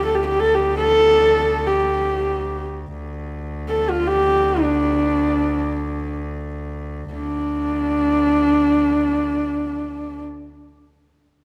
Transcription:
0.00 2.96 D2 medium
0.05 0.16 A4 medium
0.15 0.26 G4 medium
0.26 0.41 G4 medium
0.40 0.56 A4 medium
0.55 0.76 G4 medium
0.77 1.68 A4 loud
1.67 2.65 G4 medium
2.96 7.13 D2 medium
3.69 3.92 A4 medium
3.90 4.09 F4 medium
4.07 4.63 G4 medium
4.62 6.13 D4 medium
7.14 10.22 D2 medium
7.14 10.22 D4 medium

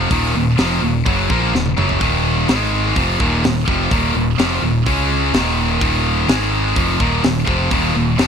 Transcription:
0.00 0.10 C3 medium
0.00 0.10 F3 loud
0.10 0.33 D#1 loud
0.10 0.33 D#2 loud
0.10 0.34 A#2 loud
0.10 0.34 D#3 loud
0.10 kick loud
0.10 open hi-hat medium
0.35 0.57 D#1 medium
0.35 0.54 D#2 medium
0.35 0.54 A#2 medium
0.58 0.81 F1 medium
0.58 0.81 F2 medium
0.58 0.82 C3 medium
0.58 0.82 F3 loud
0.58 snare loud
0.58 open hi-hat medium
0.82 1.04 D#1 medium
0.82 1.01 D#2 medium
0.82 1.01 A#2 medium
1.06 1.28 F#1 medium
1.06 1.29 F#2 medium
1.06 1.29 C#3 medium
1.06 1.30 F#3 loud
1.06 kick loud
1.06 open hi-hat medium
1.30 1.52 A#1 medium
1.30 1.53 A#2 medium
1.30 1.53 F3 medium
1.30 1.53 A#3 loud
1.30 kick loud
1.54 1.76 D#1 medium
1.54 1.73 D#2 medium
1.54 1.73 A#2 medium
1.54 snare medium
1.66 high tom medium
1.77 1.99 F#1 medium
1.77 2.00 F#2 medium
1.77 2.00 C#3 medium
1.77 2.01 F#3 loud
1.77 mid tom medium
1.89 floor tom medium
2.00 2.45 D#1 medium
2.00 2.47 D#2 loud
2.00 2.48 A#2 loud
2.00 2.48 D#3 loud
2.00 kick loud
2.00 open hi-hat medium
2.48 2.93 G#1 medium
2.48 2.95 G#2 medium
2.48 2.96 D#3 loud
2.48 2.96 G#3 loud
2.48 snare loud
2.48 open hi-hat medium
2.95 3.18 F1 medium
2.95 3.19 F2 medium
2.95 3.19 C3 loud
2.95 3.19 F3 medium
2.95 kick loud
2.95 open hi-hat medium
3.20 3.42 D#1 medium
3.20 3.43 D#2 loud
3.20 3.43 A#2 medium
3.20 3.43 D#3 medium
3.20 kick loud
3.44 3.66 D#1 medium
3.44 3.63 D#2 medium
3.44 3.63 A#2 medium
3.44 snare loud
3.44 open hi-hat medium
3.67 3.90 F1 medium
3.67 3.90 F2 medium
3.67 3.91 C3 medium
3.67 3.91 F3 medium
3.67 kick loud
3.91 4.13 D#1 loud
3.91 4.13 D#2 medium
3.91 4.14 A#2 loud
3.91 4.15 D#3 loud
3.91 kick loud
3.91 open hi-hat medium
4.15 4.37 D#1 medium
4.15 4.34 D#2 medium
4.15 4.34 A#2 medium
4.38 4.61 F1 medium
4.38 4.61 F2 medium
4.38 4.62 C3 medium
4.38 4.62 F3 loud
4.38 snare loud
4.38 open hi-hat medium
4.62 4.84 D#1 medium
4.62 4.81 D#2 medium
4.62 4.82 A#2 medium
4.86 5.30 C#2 medium
4.86 5.33 C#3 medium
4.86 5.33 G#3 loud
4.86 5.34 C#4 loud
4.86 kick loud
4.86 open hi-hat medium
5.33 5.78 D#1 loud
5.33 5.79 D#2 medium
5.33 5.80 A#2 loud
5.33 5.81 D#3 loud
5.33 snare loud
5.33 open hi-hat medium
5.81 6.25 D#1 medium
5.81 6.28 D#2 medium
5.81 6.28 A#2 loud
5.81 6.28 D#3 loud
5.81 kick loud
5.81 open hi-hat medium
6.28 6.73 G#1 loud
6.28 6.75 G#2 loud
6.28 6.76 D#3 medium
6.28 6.76 G#3 loud
6.28 snare loud
6.28 open hi-hat medium
6.76 6.98 F1 medium
6.76 6.99 F2 medium
6.76 7.00 C3 medium
6.76 7.00 F3 medium
6.76 kick loud
6.76 open hi-hat medium
7.00 7.22 D#1 medium
7.00 7.22 D#2 medium
7.00 7.23 A#2 medium
7.00 7.24 D#3 loud
7.00 kick loud
7.24 7.46 D#1 medium
7.24 7.43 D#2 medium
7.24 7.43 A#2 medium
7.24 snare loud
7.24 open hi-hat medium
7.46 7.70 F1 medium
7.46 7.70 F2 medium
7.46 7.70 C3 medium
7.46 7.71 F3 medium
7.46 kick loud
7.71 7.93 D#1 loud
7.71 7.94 D#2 loud
7.71 7.95 A#2 loud
7.71 7.95 D#3 loud
7.71 kick loud
7.71 open hi-hat medium
7.94 8.17 D#1 medium
7.94 8.14 D#2 medium
7.94 8.15 A#2 medium
8.19 8.27 F1 medium
8.19 8.27 F2 medium
8.19 8.27 C3 medium
8.19 8.27 F3 medium
8.19 snare loud
8.19 open hi-hat medium

